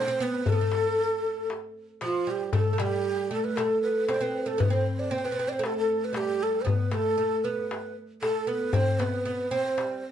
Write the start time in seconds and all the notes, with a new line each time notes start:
Already playing: C5
0.01 D4
0.08 C4
0.20 B3 B4
0.34 darbuka ka
0.46 A3 A4, darbuka dum
0.52 B3
0.60 A3, darbuka ka
0.72 darbuka tek
0.98 darbuka ka
1.11 darbuka ka
1.37 darbuka ka
1.50 darbuka tek
2.01 F3 F4, darbuka tek
2.27 G3 G4
2.40 darbuka ka
2.53 A3 A4, darbuka dum
2.66 darbuka ka
2.73 A3
2.78 G3 G4, darbuka tek
2.91 darbuka ka
3.04 darbuka ka
3.17 darbuka ka
3.31 A3 A4
3.44 B4, darbuka ka
3.56 A3 A4, darbuka tek
3.82 B4
4.09 C4 C5, darbuka tek
4.14 D4
4.21 C4 B4
4.46 A3 A4, darbuka ka
4.58 B3 B4, darbuka dum
4.70 C4 C5
4.98 D5, darbuka ka
5.11 C4 C5, darbuka ka
5.18 C4
5.25 C4 B4, darbuka ka
5.32 C4
5.39 C4
5.47 C4 D5, darbuka ka
5.52 C5
5.59 A3
5.64 A4, darbuka tek
5.77 A4, darbuka ka
5.89 darbuka ka
6.04 B4
6.13 G3 G4, darbuka tek
6.27 darbuka ka
6.41 A4, darbuka ka
6.61 B3 C5
6.67 B4, darbuka dum
6.79 darbuka ka
6.91 A3 A4, darbuka tek
7.05 darbuka ka
7.18 A3, darbuka ka
7.31 darbuka ka
7.44 B3 B4
7.57 darbuka ka
7.71 darbuka tek
8.21 A3 A4, darbuka tek
8.47 B3 B4
8.61 darbuka ka
8.73 C4 C5, darbuka dum
8.88 darbuka ka
8.99 B3 B4, darbuka tek
9.14 darbuka ka
9.25 B3, darbuka ka
9.39 darbuka ka
9.50 C4 C5
9.65 darbuka ka
9.78 G3, darbuka tek